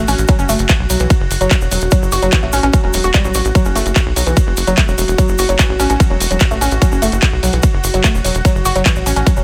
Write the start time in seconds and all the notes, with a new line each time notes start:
Already playing: F#4
0.08 A1 C#4, open hi-hat, shaker
0.18 A1, closed hi-hat, shaker
0.28 F#3, kick, closed hi-hat, ride, shaker
0.39 F#1 C#4, shaker
0.49 F#1 A3, open hi-hat, shaker
0.59 F#1, closed hi-hat, shaker
0.69 kick, clap, closed hi-hat, ride, shaker
0.80 B1
0.90 B1 F#3, open hi-hat, shaker
1.00 B1 E3, closed hi-hat, shaker
1.10 kick, closed hi-hat, ride, shaker
1.20 F#1
1.31 F#1, open hi-hat, shaker
1.41 F#1 F#3, closed hi-hat, shaker
1.51 kick, clap, closed hi-hat, ride, shaker
1.61 E1, shaker
1.71 E1 F#3, open hi-hat, shaker
1.81 E1, closed hi-hat, shaker
1.91 F#3, kick, closed hi-hat, ride, shaker
2.02 F#1, shaker
2.12 F#1 F#4, open hi-hat, shaker
2.22 F#1 F#3, closed hi-hat, shaker
2.32 E3, kick, clap, closed hi-hat, ride, shaker
2.43 A1 A3
2.53 A1 C#4, open hi-hat, shaker
2.63 A1 C#4, closed hi-hat, shaker
2.73 F#3, kick, closed hi-hat, ride, shaker
2.84 E1 F#3
2.93 E1 F#3, open hi-hat, shaker
3.04 E1 F#4, closed hi-hat, shaker
3.14 G3, kick, clap, closed hi-hat, ride, shaker
3.24 A1 F#3, shaker
3.34 A1 F#4, open hi-hat, shaker
3.45 A1, closed hi-hat, shaker
3.55 F#3, kick, closed hi-hat, ride, shaker
3.65 F#1 C#4, shaker
3.75 F#1 A3, open hi-hat, shaker
3.86 F#1, closed hi-hat, shaker
3.96 kick, clap, closed hi-hat, ride, shaker
4.06 B1
4.16 B1 F#3, open hi-hat, shaker
4.27 B1 E3, closed hi-hat, shaker
4.37 kick, closed hi-hat, ride, shaker
4.47 F#1
4.57 F#1, open hi-hat, shaker
4.67 F#1 F#3, closed hi-hat, shaker
4.78 A3, kick, clap, closed hi-hat, ride, shaker
4.88 E1, shaker
4.98 E1 F#3, open hi-hat, shaker
5.08 E1, closed hi-hat, shaker
5.18 F#3, kick, closed hi-hat, ride, shaker
5.28 F#1, shaker
5.38 F#1 F#4, open hi-hat, shaker
5.49 F#1 F#3, closed hi-hat, shaker
5.59 E3, kick, clap, closed hi-hat, ride, shaker
5.69 A1
5.80 A1 C#4, open hi-hat, shaker
5.90 A1 C#4, closed hi-hat, shaker
6.00 F#3, kick, closed hi-hat, ride, shaker
6.10 E1 F#3
6.20 E1, open hi-hat, shaker
6.31 E1 F#3, closed hi-hat, shaker
6.40 kick, clap, closed hi-hat, ride, shaker
6.51 A1 A3, shaker
6.61 A1 C#4, open hi-hat, shaker
6.71 A1, closed hi-hat, shaker
6.82 F#3, kick, closed hi-hat, ride, shaker
6.92 F#1 C#4, shaker
7.02 F#1 A3, open hi-hat, shaker
7.12 F#1, closed hi-hat, shaker
7.22 kick, clap, closed hi-hat, ride, shaker
7.33 B1
7.43 B1 F#3, open hi-hat, shaker
7.52 B1 E3, closed hi-hat, shaker
7.63 kick, closed hi-hat, ride, shaker
7.74 F#1
7.84 F#1, open hi-hat, shaker
7.94 F#1 F#3, closed hi-hat, shaker
8.04 A3, kick, clap, closed hi-hat, ride, shaker
8.14 E1, shaker
8.24 E1 F#3, open hi-hat, shaker
8.35 E1, closed hi-hat, shaker
8.45 F#3, kick, closed hi-hat, ride, shaker
8.55 F#1, shaker
8.65 F#1 F#4, open hi-hat, shaker
8.75 F#1 F#3, closed hi-hat, shaker
8.86 E3, kick, clap, closed hi-hat, ride, shaker
8.96 A1, shaker
9.06 A1 C#4, open hi-hat, shaker
9.16 A1 C#4, closed hi-hat, shaker
9.27 F#3, kick, closed hi-hat, ride, shaker
9.37 E1 F#3, shaker